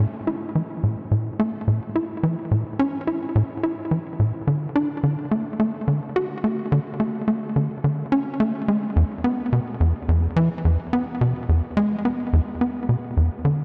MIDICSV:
0, 0, Header, 1, 2, 480
1, 0, Start_track
1, 0, Key_signature, 3, "major"
1, 0, Tempo, 560748
1, 1912, Time_signature, 4, 2, 24, 8
1, 11680, End_track
2, 0, Start_track
2, 0, Title_t, "Analog synth bass"
2, 0, Program_c, 0, 38
2, 233, Note_on_c, 0, 64, 72
2, 397, Note_off_c, 0, 64, 0
2, 474, Note_on_c, 0, 52, 72
2, 539, Note_off_c, 0, 52, 0
2, 714, Note_on_c, 0, 45, 68
2, 823, Note_off_c, 0, 45, 0
2, 953, Note_on_c, 0, 45, 80
2, 1117, Note_off_c, 0, 45, 0
2, 1194, Note_on_c, 0, 57, 97
2, 1303, Note_off_c, 0, 57, 0
2, 1434, Note_on_c, 0, 45, 73
2, 1543, Note_off_c, 0, 45, 0
2, 1674, Note_on_c, 0, 64, 75
2, 1782, Note_off_c, 0, 64, 0
2, 1912, Note_on_c, 0, 52, 82
2, 2021, Note_off_c, 0, 52, 0
2, 2151, Note_on_c, 0, 45, 74
2, 2261, Note_off_c, 0, 45, 0
2, 2392, Note_on_c, 0, 61, 99
2, 2556, Note_off_c, 0, 61, 0
2, 2631, Note_on_c, 0, 64, 70
2, 2796, Note_off_c, 0, 64, 0
2, 2872, Note_on_c, 0, 45, 97
2, 2938, Note_off_c, 0, 45, 0
2, 3111, Note_on_c, 0, 64, 76
2, 3276, Note_off_c, 0, 64, 0
2, 3348, Note_on_c, 0, 52, 72
2, 3416, Note_off_c, 0, 52, 0
2, 3591, Note_on_c, 0, 45, 74
2, 3701, Note_off_c, 0, 45, 0
2, 3829, Note_on_c, 0, 50, 83
2, 3995, Note_off_c, 0, 50, 0
2, 4070, Note_on_c, 0, 62, 95
2, 4181, Note_off_c, 0, 62, 0
2, 4309, Note_on_c, 0, 50, 76
2, 4420, Note_off_c, 0, 50, 0
2, 4549, Note_on_c, 0, 57, 72
2, 4660, Note_off_c, 0, 57, 0
2, 4790, Note_on_c, 0, 57, 81
2, 4901, Note_off_c, 0, 57, 0
2, 5030, Note_on_c, 0, 50, 73
2, 5141, Note_off_c, 0, 50, 0
2, 5272, Note_on_c, 0, 66, 92
2, 5437, Note_off_c, 0, 66, 0
2, 5512, Note_on_c, 0, 57, 74
2, 5676, Note_off_c, 0, 57, 0
2, 5752, Note_on_c, 0, 50, 100
2, 5818, Note_off_c, 0, 50, 0
2, 5990, Note_on_c, 0, 57, 76
2, 6155, Note_off_c, 0, 57, 0
2, 6229, Note_on_c, 0, 57, 76
2, 6296, Note_off_c, 0, 57, 0
2, 6471, Note_on_c, 0, 50, 71
2, 6581, Note_off_c, 0, 50, 0
2, 6712, Note_on_c, 0, 50, 80
2, 6876, Note_off_c, 0, 50, 0
2, 6951, Note_on_c, 0, 61, 98
2, 7061, Note_off_c, 0, 61, 0
2, 7190, Note_on_c, 0, 57, 93
2, 7301, Note_off_c, 0, 57, 0
2, 7433, Note_on_c, 0, 56, 73
2, 7597, Note_off_c, 0, 56, 0
2, 7672, Note_on_c, 0, 40, 100
2, 7738, Note_off_c, 0, 40, 0
2, 7911, Note_on_c, 0, 59, 74
2, 8076, Note_off_c, 0, 59, 0
2, 8154, Note_on_c, 0, 47, 75
2, 8219, Note_off_c, 0, 47, 0
2, 8392, Note_on_c, 0, 40, 71
2, 8502, Note_off_c, 0, 40, 0
2, 8633, Note_on_c, 0, 40, 78
2, 8797, Note_off_c, 0, 40, 0
2, 8871, Note_on_c, 0, 52, 96
2, 8981, Note_off_c, 0, 52, 0
2, 9114, Note_on_c, 0, 40, 69
2, 9223, Note_off_c, 0, 40, 0
2, 9356, Note_on_c, 0, 59, 75
2, 9464, Note_off_c, 0, 59, 0
2, 9596, Note_on_c, 0, 47, 80
2, 9704, Note_off_c, 0, 47, 0
2, 9835, Note_on_c, 0, 40, 72
2, 9943, Note_off_c, 0, 40, 0
2, 10074, Note_on_c, 0, 56, 102
2, 10237, Note_off_c, 0, 56, 0
2, 10315, Note_on_c, 0, 59, 74
2, 10478, Note_off_c, 0, 59, 0
2, 10555, Note_on_c, 0, 40, 96
2, 10619, Note_off_c, 0, 40, 0
2, 10795, Note_on_c, 0, 59, 71
2, 10958, Note_off_c, 0, 59, 0
2, 11033, Note_on_c, 0, 47, 70
2, 11098, Note_off_c, 0, 47, 0
2, 11274, Note_on_c, 0, 40, 77
2, 11382, Note_off_c, 0, 40, 0
2, 11511, Note_on_c, 0, 50, 82
2, 11676, Note_off_c, 0, 50, 0
2, 11680, End_track
0, 0, End_of_file